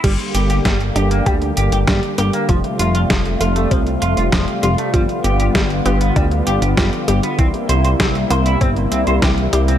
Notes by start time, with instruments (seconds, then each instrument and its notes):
0.04 analog synth bass G1, analog synth pad D3 G3 A#3 G4, synth arpeggio sound G3, clean electric guitar G3, kick, closed hi-hat, crash
0.19 closed hi-hat
0.34 analog synth bass G1, clean electric guitar G4, closed hi-hat
0.50 clean electric guitar G4, closed hi-hat
0.65 analog synth bass G1, clean electric guitar G3, synth arpeggio sound A#3, kick, snare, closed hi-hat
0.81 closed hi-hat
0.96 analog synth bass G1, synth arpeggio sound D4, clean electric guitar G4, closed hi-hat
1.11 clean electric guitar A#3, closed hi-hat
1.26 analog synth bass D2, clean electric guitar G3, synth arpeggio sound G4, kick, closed hi-hat
1.42 closed hi-hat
1.57 analog synth bass G1, clean electric guitar G4, closed hi-hat
1.72 analog synth bass G1, clean electric guitar G4, closed hi-hat
1.87 analog synth bass G1, synth arpeggio sound G3, clean electric guitar G3, kick, snare, closed hi-hat
2.03 closed hi-hat
2.18 analog synth bass G1, synth arpeggio sound A#3, clean electric guitar G4, closed hi-hat
2.33 clean electric guitar A#3, closed hi-hat
2.49 analog synth bass F1, analog synth pad C3 A3 F4, synth arpeggio sound F3, clean electric guitar F3, kick, closed hi-hat
2.64 closed hi-hat
2.79 analog synth bass F1, clean electric guitar F4, closed hi-hat
2.95 clean electric guitar F4, closed hi-hat
3.10 analog synth bass F1, clean electric guitar F3, synth arpeggio sound G3, kick, snare, closed hi-hat
3.25 closed hi-hat
3.41 analog synth bass F1, synth arpeggio sound A3, clean electric guitar F4, closed hi-hat
3.56 clean electric guitar A3, closed hi-hat
3.71 analog synth bass C2, clean electric guitar F3, synth arpeggio sound C4, kick, closed hi-hat
3.87 closed hi-hat
4.02 analog synth bass F1, clean electric guitar F4, closed hi-hat
4.17 analog synth bass F1, clean electric guitar F4, closed hi-hat
4.32 analog synth bass F1, synth arpeggio sound F3, clean electric guitar F3, kick, snare, closed hi-hat
4.48 closed hi-hat
4.63 analog synth bass F1, synth arpeggio sound G3, clean electric guitar F4, closed hi-hat
4.78 clean electric guitar A3, closed hi-hat
4.94 analog synth bass G1, analog synth pad D3 B3, synth arpeggio sound F3, clean electric guitar G3, kick, closed hi-hat
5.09 closed hi-hat
5.24 analog synth bass G1, clean electric guitar G4, closed hi-hat
5.40 clean electric guitar G4, closed hi-hat
5.55 analog synth bass G1, clean electric guitar G3, synth arpeggio sound G3, kick, snare, closed hi-hat
5.70 closed hi-hat
5.86 analog synth bass G1, synth arpeggio sound B3, clean electric guitar G4, closed hi-hat
6.01 clean electric guitar B3, closed hi-hat
6.16 analog synth bass D2, clean electric guitar G3, synth arpeggio sound D4, kick, closed hi-hat
6.31 closed hi-hat
6.47 analog synth bass G1, clean electric guitar G4, closed hi-hat
6.62 analog synth bass G1, clean electric guitar G4, closed hi-hat
6.77 analog synth bass G1, synth arpeggio sound F3, clean electric guitar G3, kick, snare, closed hi-hat
6.93 closed hi-hat
7.08 analog synth bass G1, synth arpeggio sound G3, clean electric guitar G4, closed hi-hat
7.23 clean electric guitar B3, closed hi-hat
7.39 analog synth bass C2, analog synth pad C3 G3 A#3 E4, synth arpeggio sound E3, clean electric guitar C4, kick, closed hi-hat
7.54 closed hi-hat
7.69 analog synth bass C2, clean electric guitar C5, closed hi-hat
7.85 clean electric guitar C5, closed hi-hat
8.00 analog synth bass C2, synth arpeggio sound G3, clean electric guitar C4, kick, snare, closed hi-hat
8.15 closed hi-hat
8.30 analog synth bass C2, synth arpeggio sound A#3, clean electric guitar C5, closed hi-hat
8.46 clean electric guitar E4, closed hi-hat
8.61 analog synth bass G1, clean electric guitar C4, synth arpeggio sound C4, kick, closed hi-hat
8.76 closed hi-hat
8.92 analog synth bass C2, clean electric guitar C4, closed hi-hat
9.07 analog synth bass C2, clean electric guitar C5, closed hi-hat
9.22 analog synth bass C2, synth arpeggio sound E3, clean electric guitar G4, kick, snare, closed hi-hat
9.38 closed hi-hat
9.53 analog synth bass C2, synth arpeggio sound G3, clean electric guitar G4, closed hi-hat
9.68 clean electric guitar C4, closed hi-hat